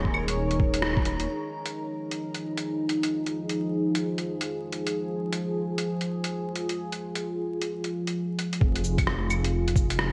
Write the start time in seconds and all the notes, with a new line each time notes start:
Already playing: D#1 D#4 G#4 A#4 C#5
0.05 kick
0.14 claves
0.28 closed hi-hat
0.51 closed hi-hat
0.60 kick
0.74 closed hi-hat
0.82 cross-stick
0.97 kick
1.05 closed hi-hat
1.20 closed hi-hat
1.30 F3 D#4 G#4
1.66 closed hi-hat
2.11 closed hi-hat
2.34 closed hi-hat
2.57 closed hi-hat
2.89 closed hi-hat
3.03 closed hi-hat
3.26 closed hi-hat
3.49 closed hi-hat
3.95 closed hi-hat
4.18 closed hi-hat
4.41 closed hi-hat
4.72 closed hi-hat
4.87 closed hi-hat
4.96 F4
5.33 closed hi-hat
5.78 closed hi-hat
6.01 closed hi-hat
6.24 closed hi-hat
6.55 closed hi-hat
6.69 closed hi-hat
6.92 closed hi-hat
7.15 closed hi-hat
7.62 closed hi-hat
7.84 closed hi-hat
8.07 closed hi-hat
8.39 closed hi-hat
8.53 closed hi-hat
8.61 F1 D#4 F4 G#4, kick
8.76 closed hi-hat
8.84 cabasa
8.98 kick, closed hi-hat, claves
9.07 cross-stick
9.30 cabasa, claves
9.44 closed hi-hat
9.68 closed hi-hat
9.76 kick, cabasa
9.90 closed hi-hat
9.99 cross-stick